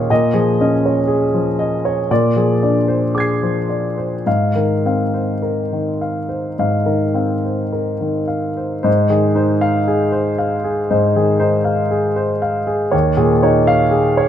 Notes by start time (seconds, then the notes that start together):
Already playing: D#2 A#2 C#4 G#4 C#5 F5
0.10 A#2 D#5
0.34 F3 G#4
0.61 C#4 D#5
0.86 C#5
1.07 G#4
1.34 F3
1.59 D#5
1.85 C#5
2.11 A#2 D5
2.36 F3 G#4
2.63 D4 D5
2.88 C5
3.15 G#4 D6 G#6
3.20 C7
3.43 F3
3.69 D5
3.98 C5
4.26 G#2 F5
4.55 D#3 A#4
4.86 C4 F5
5.14 C5
5.42 A#4
5.73 D#3
6.01 F5
6.29 C5
6.59 G#2 F5
6.86 D#3 A#4
7.14 C4 F5
7.45 C5
7.72 A#4
8.01 D#3
8.28 F5
8.57 C5
8.83 G#2 C5
9.10 D#3 G#4
9.35 D#4 C5
9.61 F5
9.88 G#4
10.12 C5
10.38 F5
10.64 G#4
10.91 G#2 C5
11.16 D#3 G#4
11.40 D#4 C5
11.65 F5
11.91 G#4
12.16 C5
12.42 F5
12.67 G#4
12.91 D#2 C#5
13.17 A#2 G#4
13.42 D#4 C#5
13.67 F5
13.91 G#4
14.17 C#5